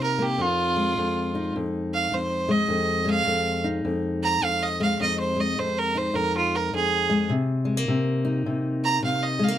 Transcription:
0.00 0.37 C3 medium
0.00 0.17 A#3 medium
0.00 0.41 D#4 medium
0.00 0.24 A#4 medium
0.18 0.37 A#3 medium
0.18 0.43 G4 medium
0.38 0.97 F2 medium
0.38 1.52 F4 loud
0.76 2.48 G#3 medium
0.98 1.55 F2 medium
1.35 2.71 D#4 medium
1.56 2.11 F2 medium
1.94 2.15 F5 medium
2.12 2.68 F2 medium
2.12 2.53 C5 medium
2.49 3.05 G#3 medium
2.49 3.07 D#5 medium
2.69 3.26 F2 medium
3.05 4.78 G#3 medium
3.10 3.65 F5 loud
3.26 3.84 F2 medium
3.64 5.04 D#4 medium
3.85 4.41 F2 medium
4.23 4.45 A#5 medium
4.42 4.97 F2 medium
4.42 4.64 F5 loud
4.63 4.81 D#5 medium
4.80 5.35 G#3 medium
4.80 5.00 F5 medium
5.00 5.57 F2 medium
5.00 5.19 D#5 loud
5.19 5.42 C5 medium
5.36 7.08 G#3 medium
5.36 5.60 D#5 medium
5.58 6.13 F2 medium
5.58 5.80 C5 medium
5.78 5.99 A#4 medium
5.95 8.24 D#4 medium
5.95 6.17 C5 medium
6.14 6.72 F2 medium
6.14 6.34 A#4 loud
6.37 6.57 F4 medium
6.56 6.73 A#4 medium
6.73 7.28 F2 medium
6.73 7.30 G#4 loud
7.10 7.31 G#3 medium
7.29 7.87 C3 medium
7.65 7.77 G#3 medium
7.77 9.39 A#3 soft
7.88 8.45 C3 medium
8.25 9.58 D#4 medium
8.46 9.02 C3 medium
8.84 9.03 A#5 loud
9.03 9.58 C3 medium
9.03 9.24 F5 loud
9.23 9.45 D#5 medium
9.39 9.48 G#3 medium
9.43 9.58 F5 medium
9.48 9.58 A#3 medium

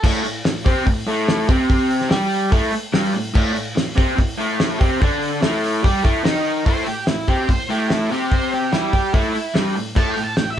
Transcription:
0.03 0.23 A2 loud
0.03 0.24 A3 loud
0.03 kick loud
0.03 crash loud
0.24 0.41 A2 medium
0.24 open hi-hat medium
0.45 0.62 A2 medium
0.45 snare loud
0.45 open hi-hat medium
0.65 0.85 C3 medium
0.65 0.86 C4 loud
0.65 kick loud
0.65 open hi-hat medium
0.86 1.03 A2 medium
0.86 kick loud
0.86 open hi-hat medium
1.07 1.48 A2 loud
1.07 1.48 A3 loud
1.07 open hi-hat medium
1.28 snare loud
1.28 open hi-hat medium
1.48 2.10 C3 medium
1.48 2.11 C4 medium
1.48 kick loud
1.48 open hi-hat medium
1.70 kick loud
1.70 open hi-hat medium
1.90 open hi-hat medium
2.01 snare soft
2.09 2.51 G3 medium
2.09 2.51 G4 loud
2.09 snare loud
2.09 open hi-hat medium
2.32 open hi-hat medium
2.50 2.71 A2 loud
2.50 2.72 A3 loud
2.50 kick loud
2.50 open hi-hat medium
2.72 muted overdriven electric guitar stroke medium
2.72 open hi-hat medium
2.93 3.13 G2 medium
2.93 3.14 G3 loud
2.93 snare loud
2.93 open hi-hat loud
3.14 3.31 A2 medium
3.14 open hi-hat medium
3.34 3.53 A2 loud
3.34 3.55 A3 loud
3.34 kick loud
3.34 crash loud
3.54 3.72 A2 medium
3.54 open hi-hat medium
3.75 3.92 A2 medium
3.75 snare loud
3.75 open hi-hat medium
3.96 4.16 C3 medium
3.96 4.17 C4 loud
3.96 kick loud
3.96 open hi-hat medium
4.17 4.34 A2 medium
4.17 kick loud
4.17 open hi-hat medium
4.38 4.79 A2 loud
4.38 4.80 A3 loud
4.38 open hi-hat medium
4.60 snare loud
4.60 open hi-hat medium
4.79 5.00 C3 medium
4.79 5.00 C4 loud
4.79 kick loud
4.79 open hi-hat medium
5.01 5.41 D3 loud
5.01 5.42 D4 loud
5.01 kick loud
5.01 open hi-hat medium
5.22 open hi-hat medium
5.42 5.83 A2 loud
5.42 5.83 A3 loud
5.42 snare loud
5.42 open hi-hat medium
5.63 open hi-hat medium
5.83 6.03 G3 loud
5.83 6.04 G4 loud
5.83 kick loud
5.83 open hi-hat medium
6.04 6.24 A2 loud
6.04 6.24 A3 loud
6.04 kick loud
6.04 open hi-hat medium
6.24 6.65 D#3 medium
6.24 6.66 D#4 loud
6.24 snare loud
6.24 open hi-hat medium
6.46 open hi-hat medium
6.66 6.86 A2 loud
6.66 6.87 A3 loud
6.66 6.87 C5 loud
6.66 kick loud
6.66 open hi-hat medium
6.86 7.03 A2 medium
6.86 7.07 G4 medium
6.86 open hi-hat medium
7.07 7.24 A2 medium
7.07 7.28 E4 medium
7.07 snare loud
7.07 open hi-hat medium
7.28 7.48 C3 medium
7.28 7.49 C4 medium
7.28 7.50 G4 medium
7.28 kick medium
7.28 open hi-hat medium
7.49 7.65 A2 medium
7.49 7.70 C5 medium
7.49 kick loud
7.49 open hi-hat medium
7.69 8.09 A2 loud
7.69 8.11 A3 loud
7.69 7.90 G4 medium
7.69 open hi-hat medium
7.90 8.12 E4 medium
7.90 snare loud
7.90 open hi-hat medium
8.10 8.72 C3 medium
8.10 8.73 C4 medium
8.10 8.32 G4 medium
8.10 open hi-hat medium
8.32 8.52 C5 medium
8.32 kick loud
8.32 open hi-hat medium
8.52 8.73 G4 medium
8.52 open hi-hat medium
8.72 9.13 G3 medium
8.72 8.94 E4 medium
8.72 9.14 G4 medium
8.72 snare loud
8.72 open hi-hat medium
8.93 9.14 G4 medium
8.93 kick medium
8.93 open hi-hat medium
9.13 9.34 A2 loud
9.13 9.35 A3 loud
9.13 9.55 E4 medium
9.13 kick loud
9.13 open hi-hat medium
9.35 muted overdriven electric guitar stroke medium
9.35 open hi-hat medium
9.54 9.75 G2 medium
9.54 9.76 G3 medium
9.54 snare loud
9.54 open hi-hat medium
9.75 9.92 A2 medium
9.75 open hi-hat medium
9.95 10.15 A2 medium
9.95 10.17 A3 loud
9.95 10.11 A5 loud
9.95 kick loud
9.95 crash loud
10.11 10.24 G5 medium
10.17 10.34 A2 medium
10.17 open hi-hat medium
10.24 10.36 A5 medium
10.36 10.54 A2 medium
10.36 10.51 G5 loud
10.36 snare loud
10.36 open hi-hat medium
10.50 10.59 E5 loud

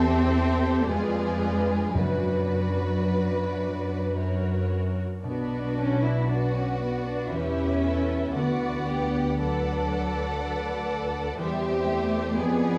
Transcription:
0.00 0.85 E2 medium
0.00 0.94 E2 medium
0.00 0.82 C4 loud
0.00 0.93 C4 soft
0.00 0.93 E4 medium
0.00 0.88 G4 medium
0.00 0.92 G4 medium
0.00 0.89 A4 medium
0.00 0.88 C5 medium
0.00 0.86 E5 medium
0.21 0.92 C5 medium
0.55 0.93 E5 medium
0.83 0.89 A#3 medium
0.83 1.92 D5 medium
0.88 1.98 F2 medium
0.88 1.94 F2 medium
0.88 1.94 G#3 medium
0.88 1.94 F4 medium
0.88 1.92 G#4 medium
0.88 1.94 B4 medium
1.22 2.30 B3 soft
1.57 2.68 D4 soft
1.57 3.05 B4 soft
1.93 4.16 F#2 medium
1.93 5.00 F#2 medium
1.93 3.59 F#2 medium
1.93 4.67 F#3 medium
1.93 4.14 F#4 medium
1.93 4.71 B4 medium
1.93 4.14 B4 medium
1.93 4.12 D5 soft
2.31 4.21 B3 soft
2.69 3.43 D4 soft
3.06 4.21 B4 soft
3.44 4.21 D4 soft
3.81 4.21 D5 soft
4.17 5.29 F#2 soft
4.17 5.03 F#4 soft
4.17 5.05 A#4 soft
4.17 5.05 C#5 soft
4.54 5.29 C#4 soft
4.89 5.92 F#4 soft
4.89 5.29 A#4 soft
5.23 7.28 B1 medium
5.23 7.36 B2 medium
5.23 5.74 B3 medium
5.23 6.24 D4 medium
5.23 6.25 F#4 medium
5.23 6.25 B4 soft
5.23 6.24 D5 soft
5.59 7.36 D4 soft
5.77 6.03 C#4 medium
5.93 7.35 F#4 soft
6.03 6.29 E4 medium
6.28 6.55 D4 medium
6.28 7.32 F#4 medium
6.28 7.31 F#4 soft
6.28 7.99 B4 soft
6.28 7.31 B4 soft
6.28 7.29 D5 soft
6.55 6.80 C#4 medium
6.63 7.36 D5 soft
6.81 7.06 B3 medium
6.96 7.35 F#5 soft
7.05 7.32 D4 medium
7.31 8.36 E2 soft
7.31 8.40 E3 soft
7.31 8.36 C#4 medium
7.31 8.36 E4 medium
7.31 7.84 G4 soft
7.31 8.34 B4 medium
7.31 8.35 E5 medium
7.66 11.43 B3 soft
7.84 8.35 A4 soft
8.00 8.39 G4 soft
8.00 9.38 B4 soft
8.35 11.36 D2 medium
8.35 11.43 D3 medium
8.35 9.40 B3 medium
8.35 8.87 F#4 medium
8.35 9.40 B4 soft
8.35 9.40 D5 soft
8.35 9.37 F#5 soft
8.69 11.43 D4 soft
8.88 9.39 G4 medium
9.05 11.05 F#4 soft
9.40 10.91 F#3 medium
9.40 11.36 A4 medium
9.40 10.72 B4 soft
9.40 11.37 B4 medium
9.40 11.37 D5 medium
9.40 11.36 F#5 medium
9.72 10.39 D5 soft
10.07 11.43 F#5 soft
10.41 11.43 D5 soft
10.73 11.43 B4 soft
11.06 11.43 F#4 soft
11.38 12.41 E2 medium
11.38 12.36 E2 medium
11.38 11.85 G3 medium
11.38 12.36 G4 medium
11.38 12.38 G4 medium
11.38 12.36 C5 medium
11.38 12.35 E5 medium
11.72 12.42 C4 soft
11.89 12.38 A3 medium
12.04 12.42 E4 soft
12.04 12.42 G4 soft
12.36 12.78 F2 medium
12.36 12.78 B3 medium
12.36 12.78 G#4 medium
12.36 12.78 B4 medium
12.36 12.78 D5 medium
12.72 12.78 B3 soft

